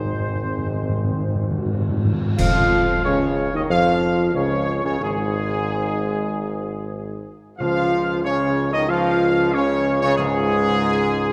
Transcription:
Already playing: tuba G#1, trombone section D#3 G#3, french horn section C4 D#4, trumpet section C5
0.04 timpani G#2
0.13 timpani G#2
0.20 timpani G#2
0.28 timpani G#2
0.35 timpani G#2, french horn section C4
0.43 timpani G#2
0.50 timpani G#2
0.58 timpani G#2
0.66 timpani G#2
0.74 timpani G#2
0.81 timpani G#2
0.89 timpani G#2
0.96 timpani G#2
1.03 timpani G#2, french horn section C4
1.12 timpani G#2
1.19 timpani G#2
1.27 timpani G#2
1.35 timpani G#2
1.43 timpani G#2
1.51 timpani G#2
1.56 timpani G#2, french horn section F#4
1.66 timpani G#2
1.72 timpani G#2, french horn section F4
1.81 timpani G#2
1.89 timpani G#2
1.97 timpani G#2
2.05 timpani G#2
2.13 timpani G#2
2.21 timpani G#2
2.28 timpani G#2
2.37 tuba F2, timpani C#3, trombone section F3, french horn section F4, trumpet section F5, concert bass drum, crash
3.04 tuba C#2, trombone section C#3, french horn section C#4, trumpet section C#5
3.53 tuba D#2, trombone section D#3, french horn section D#4, trumpet section D#5
3.69 tuba F2, trombone section F3, french horn section F4, trumpet section F5
4.34 tuba C#2, trombone section C#3, french horn section C#4, trumpet section C#5
4.84 tuba C#2, trombone section C#3, french horn section C#4, trumpet section C#5
4.99 tuba G#1, trombone section G#2, french horn section G#3, trumpet section G#4
7.58 tuba C#2, timpani C#3, trombone section F3, french horn section F4, trumpet section F5
8.23 trombone section C#3, french horn section C#4, trumpet section C#5
8.72 trombone section D#3, french horn section D#4, trumpet section D#5
8.87 trombone section F3, french horn section F4, trumpet section F5
9.53 trombone section C#3, french horn section C#4, trumpet section C#5
10.01 trombone section C#3, french horn section C#4, trumpet section C#5
10.16 trombone section G#2, timpani C#3, french horn section G#3, trumpet section G#4

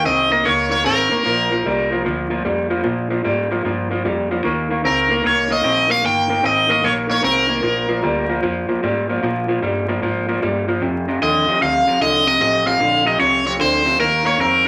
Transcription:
0.05 fingered electric bass C2, clean electric guitar D#3 C4, overdriven electric guitar D#5
0.31 clean electric guitar D#3 A#3, overdriven electric guitar D#5
0.45 fingered electric bass C#2, clean electric guitar D#3 A#3, overdriven electric guitar C#5
0.71 clean electric guitar D#3 A#3, overdriven electric guitar C#5
0.86 fingered electric bass G#1, clean electric guitar D#3 C4, overdriven electric guitar A#4
1.11 clean electric guitar D#3 A#3, muted fingered electric bass stroke
1.25 fingered electric bass A#1, clean electric guitar A#2 F3
1.52 clean electric guitar A#2 F3
1.66 fingered electric bass C2, clean electric guitar A#2 G3
1.91 clean electric guitar A#2 F3
2.05 fingered electric bass D2, clean electric guitar A#2 F3
2.30 clean electric guitar A#2 F3
2.45 fingered electric bass F2, clean electric guitar A#2 G3
2.70 clean electric guitar A#2 F3
2.84 clean electric guitar A#2 F3, fingered electric bass A#2
3.10 clean electric guitar A#2 F3
3.24 fingered electric bass G#2, clean electric guitar A#2 G3
3.51 clean electric guitar A#2 F3
3.65 fingered electric bass G2, clean electric guitar A#2 F3
3.91 clean electric guitar A#2 F3
4.05 fingered electric bass F2, clean electric guitar A#2 G3
4.31 clean electric guitar A#2 F3
4.44 fingered electric bass D#2, clean electric guitar D#3 A#3
4.70 clean electric guitar D#3 A#3
4.84 fingered electric bass C#2, clean electric guitar D#3 C4, overdriven electric guitar A#4
5.10 clean electric guitar D#3 A#3
5.24 fingered electric bass C2, clean electric guitar D#3 A#3, overdriven electric guitar C#5
5.50 clean electric guitar D#3 A#3, overdriven electric guitar D#5
5.64 fingered electric bass A#1, clean electric guitar D#3 C4
5.89 clean electric guitar D#3 A#3, overdriven electric guitar F5
6.04 fingered electric bass G1, clean electric guitar D#3 A#3, overdriven electric guitar G5
6.29 clean electric guitar D#3 A#3
6.43 fingered electric bass G#1, clean electric guitar D#3 C4, overdriven electric guitar D#5
6.69 clean electric guitar D#3 A#3, overdriven electric guitar D#5
6.83 fingered electric bass A#1, clean electric guitar D#3 A#3, overdriven electric guitar C#5
7.09 clean electric guitar D#3 A#3, overdriven electric guitar C#5
7.23 fingered electric bass C2, clean electric guitar D#3 C4, overdriven electric guitar A#4
7.49 clean electric guitar D#3 A#3
7.63 fingered electric bass A#1, clean electric guitar A#2 F3
7.89 clean electric guitar A#2 F3
8.03 fingered electric bass D2, clean electric guitar A#2 G3
8.29 clean electric guitar A#2 F3
8.43 fingered electric bass F2, clean electric guitar A#2 F3
8.69 clean electric guitar A#2 F3, muted fingered electric bass stroke
8.83 fingered electric bass G#2, clean electric guitar A#2 G3
9.09 clean electric guitar A#2 F3
9.22 fingered electric bass A#2, clean electric guitar A#2 F3
9.48 clean electric guitar A#2 F3
9.62 fingered electric bass G2, clean electric guitar A#2 G3
9.88 clean electric guitar A#2 F3
10.02 fingered electric bass G#2, clean electric guitar A#2 F3
10.29 clean electric guitar A#2 F3
10.42 fingered electric bass G2, clean electric guitar A#2 G3
10.68 clean electric guitar A#2 F3
10.82 clean electric guitar F2 C3, fingered electric bass F2
11.08 clean electric guitar F2 C3
11.22 fingered electric bass D#2, clean electric guitar F2 D3, overdriven electric guitar D#5
11.48 clean electric guitar F2 C3, muted fingered electric bass stroke
11.61 fingered electric bass D2, clean electric guitar F2 C3, overdriven electric guitar F5
11.87 clean electric guitar F2 C3, muted fingered electric bass stroke
12.01 fingered electric bass C2, clean electric guitar F2 D3, overdriven electric guitar D#5
12.27 clean electric guitar F2 C3, overdriven electric guitar D#5
12.40 fingered electric bass A1, clean electric guitar F2 C3, overdriven electric guitar D#5
12.66 clean electric guitar F2 C3, overdriven electric guitar F5
12.80 fingered electric bass A#1, clean electric guitar F2 D3
13.06 clean electric guitar F2 C3, overdriven electric guitar D#5
13.20 fingered electric bass C2, clean electric guitar F2 C3, overdriven electric guitar C#5
13.45 clean electric guitar F2 C3, overdriven electric guitar C#5
13.59 fingered electric bass D2, clean electric guitar F2 D3, overdriven electric guitar C5
13.85 clean electric guitar F2 C3
14.00 fingered electric bass D#2, clean electric guitar D#3 A#3, overdriven electric guitar A#4
14.25 clean electric guitar D#3 A#3, overdriven electric guitar C#5
14.39 fingered electric bass F2, clean electric guitar D#3 C4, overdriven electric guitar A#4

